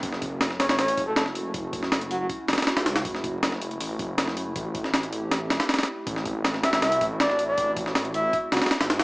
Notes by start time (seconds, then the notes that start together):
Already playing: C#4
0.03 F#1 A3 E4 F#4, kick, open hi-hat
0.13 snare
0.22 kick, open hi-hat
0.41 snare, open hi-hat
0.50 snare
0.59 C#5, snare, open hi-hat
0.69 C#5, snare, open hi-hat
0.79 A1 C#5, snare, open hi-hat
0.88 open hi-hat
0.97 F#1, kick, open hi-hat
1.07 A4
1.16 A4, snare, open hi-hat
1.26 snare
1.35 open hi-hat
1.54 F#1, kick, open hi-hat
1.73 kick, open hi-hat
1.83 snare
1.92 snare, open hi-hat
2.01 closed hi-hat
2.10 F#4, open hi-hat
2.20 F#4
2.30 kick, open hi-hat
2.48 F#1, snare, open hi-hat
2.53 snare, open hi-hat
2.58 snare, open hi-hat
2.62 snare, open hi-hat
2.67 snare, open hi-hat
2.77 C#2, snare, open hi-hat
2.86 snare, open hi-hat
2.96 snare, open hi-hat
3.05 F#1, kick, open hi-hat
3.15 snare
3.24 kick, open hi-hat
3.43 snare, open hi-hat
3.52 snare
3.62 open hi-hat
3.71 closed hi-hat
3.80 A1, open hi-hat
3.99 F#1, kick, open hi-hat
4.18 snare, open hi-hat
4.28 snare
4.37 open hi-hat
4.56 A1 C4 G4, kick, open hi-hat
4.75 kick, open hi-hat
4.84 snare
4.94 snare, open hi-hat
5.03 closed hi-hat
5.13 open hi-hat
5.31 snare, open hi-hat
5.50 E1, snare, open hi-hat
5.60 snare, open hi-hat
5.69 snare, open hi-hat
5.74 snare, open hi-hat
5.79 snare, open hi-hat
5.83 snare, open hi-hat
6.07 A1 F#4, kick, open hi-hat
6.16 snare
6.26 kick, open hi-hat
6.45 snare, open hi-hat
6.54 snare
6.63 E5, snare, open hi-hat
6.73 E5, snare, open hi-hat
6.82 C2 E5, snare, open hi-hat
6.92 open hi-hat
7.01 A1, kick, open hi-hat
7.20 D5, snare, open hi-hat
7.30 snare
7.39 open hi-hat
7.48 D5
7.58 A1, kick, open hi-hat
7.77 kick, open hi-hat
7.86 snare
7.95 snare, open hi-hat
8.05 closed hi-hat
8.14 E5, open hi-hat
8.33 B3 C#4 E4 G#4, kick, open hi-hat
8.52 C#2 F#4, snare, open hi-hat
8.57 snare, open hi-hat
8.62 F#4, snare, open hi-hat
8.66 snare, open hi-hat
8.71 snare, open hi-hat
8.81 G#1, snare, open hi-hat
8.90 snare, open hi-hat
8.99 snare, open hi-hat